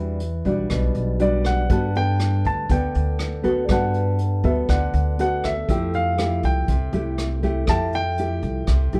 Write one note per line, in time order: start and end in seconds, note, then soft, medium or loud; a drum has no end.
0.00 0.41 E2 medium
0.00 0.68 E3 soft
0.00 0.20 G3 soft
0.00 0.20 D4 soft
0.00 0.21 F#4 soft
0.00 1.16 D5 medium
0.20 closed hi-hat soft
0.45 0.68 B1 medium
0.45 1.16 G3 medium
0.45 1.16 D4 medium
0.45 1.16 F#4 medium
0.45 kick soft
0.45 closed hi-hat soft
0.70 0.93 B1 medium
0.70 1.67 B2 soft
0.70 kick medium
0.70 cross-stick medium
0.70 closed hi-hat soft
0.95 1.66 B1 medium
0.95 closed hi-hat soft
1.19 1.68 G3 medium
1.19 1.68 D4 medium
1.19 1.68 F#4 medium
1.19 1.46 D5 medium
1.19 closed hi-hat soft
1.45 1.97 F#5 medium
1.45 kick soft
1.45 cross-stick medium
1.45 closed hi-hat soft
1.69 2.41 G2 medium
1.69 2.67 G3 soft
1.69 1.84 B3 soft
1.69 1.85 F#4 soft
1.69 1.85 A4 soft
1.69 3.65 B4 soft
1.69 3.67 A5 soft
1.69 3.66 F#6 soft
1.69 kick medium
1.69 closed hi-hat soft
1.95 2.66 B3 medium
1.95 2.67 A4 medium
1.95 2.47 G5 loud
1.95 closed hi-hat soft
2.20 cross-stick medium
2.20 closed hi-hat soft
2.45 2.68 D2 medium
2.45 2.71 A5 medium
2.45 kick soft
2.45 closed hi-hat soft
2.69 2.93 D2 medium
2.69 3.67 D3 soft
2.69 3.41 B3 soft
2.69 3.41 A4 medium
2.69 3.73 G5 medium
2.69 kick medium
2.69 closed hi-hat soft
2.94 3.66 D2 medium
2.94 closed hi-hat soft
3.19 cross-stick medium
3.19 closed hi-hat soft
3.43 3.65 B3 medium
3.43 3.65 F#4 medium
3.43 3.65 A4 medium
3.43 kick soft
3.43 closed hi-hat soft
3.68 4.40 G2 medium
3.68 4.66 G3 soft
3.68 4.19 B3 medium
3.68 4.19 F#4 soft
3.68 4.19 A4 medium
3.68 5.64 B4 soft
3.68 5.66 F#5 soft
3.68 4.17 F#5 medium
3.68 kick medium
3.68 cross-stick medium
3.68 closed hi-hat soft
3.73 5.67 A5 soft
3.94 closed hi-hat soft
4.18 closed hi-hat soft
4.44 4.67 D2 medium
4.44 5.15 B3 medium
4.44 5.15 F#4 medium
4.44 5.15 A4 medium
4.44 4.50 E5 medium
4.44 kick soft
4.44 closed hi-hat soft
4.69 4.92 D2 medium
4.69 5.66 D3 medium
4.69 5.19 F#5 medium
4.69 kick medium
4.69 cross-stick medium
4.69 closed hi-hat soft
4.94 5.65 D2 medium
4.94 closed hi-hat soft
5.19 5.53 B3 soft
5.19 5.53 F#4 medium
5.19 5.53 A4 medium
5.19 5.46 F#5 medium
5.19 closed hi-hat soft
5.44 5.96 E5 medium
5.44 kick soft
5.44 cross-stick soft
5.44 closed hi-hat soft
5.68 6.40 F2 medium
5.68 6.66 F3 soft
5.68 6.15 A3 soft
5.68 6.15 E4 soft
5.68 6.15 G4 soft
5.68 7.64 A4 soft
5.68 7.65 E6 soft
5.68 kick medium
5.68 closed hi-hat soft
5.72 7.66 G5 soft
5.93 6.41 F5 medium
5.93 closed hi-hat soft
6.18 6.68 A3 medium
6.18 6.69 E4 soft
6.18 6.68 G4 medium
6.18 cross-stick medium
6.18 closed hi-hat soft
6.43 6.67 C2 medium
6.43 7.73 G5 medium
6.43 kick soft
6.43 closed hi-hat soft
6.68 6.92 C2 medium
6.68 7.66 C3 medium
6.68 kick medium
6.68 closed hi-hat soft
6.93 7.64 C2 medium
6.93 7.39 A3 medium
6.93 7.39 E4 medium
6.93 7.40 G4 medium
6.93 closed hi-hat soft
7.18 cross-stick medium
7.18 closed hi-hat soft
7.43 7.64 A3 medium
7.43 7.64 E4 medium
7.43 7.65 G4 medium
7.43 kick soft
7.43 closed hi-hat soft
7.67 8.39 F2 medium
7.67 8.66 F3 soft
7.67 8.01 A3 soft
7.67 8.01 E4 soft
7.67 8.01 G4 soft
7.67 9.00 A4 soft
7.67 9.00 E5 soft
7.67 9.00 G5 medium
7.67 7.95 A5 medium
7.67 kick medium
7.67 cross-stick medium
7.67 closed hi-hat soft
7.93 9.00 G5 loud
7.93 closed hi-hat soft
8.17 8.68 A3 medium
8.17 8.68 E4 medium
8.17 8.69 G4 medium
8.17 closed hi-hat soft
8.42 8.66 C2 medium
8.42 kick soft
8.42 closed hi-hat soft
8.67 8.91 C2 medium
8.67 9.00 C3 soft
8.67 kick medium
8.67 cross-stick medium
8.67 closed hi-hat soft
8.92 9.00 C2 medium
8.92 9.00 A3 medium
8.92 9.00 E4 medium
8.92 9.00 G4 medium
8.92 closed hi-hat soft